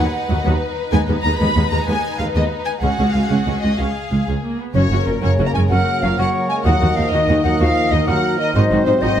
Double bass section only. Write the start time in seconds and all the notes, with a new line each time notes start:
0.30 D#2
0.45 D#2
0.93 D#2
1.08 D#2
1.24 D#2
1.41 D#2
1.56 D#2
1.72 D#2
1.88 D#2
2.20 D#2
2.35 D#2
2.82 C#2
2.98 C#2
3.14 C#2
3.30 C#2
3.46 C#2
3.63 C#2
3.79 C#2
4.12 C#2
4.28 C#2
4.75 F#1
4.91 F#1
5.07 F#1
5.23 F#1
5.39 F#1
5.55 F#1
5.70 F#1
6.03 F#1
6.19 F#1
6.66 D#2
6.82 D#2
6.98 D#2
7.13 D#2
7.29 D#2
7.44 D#2
7.61 D#2
7.91 D#2
8.07 D#2
8.55 G#1
8.71 G#1
8.86 G#1
9.03 G#1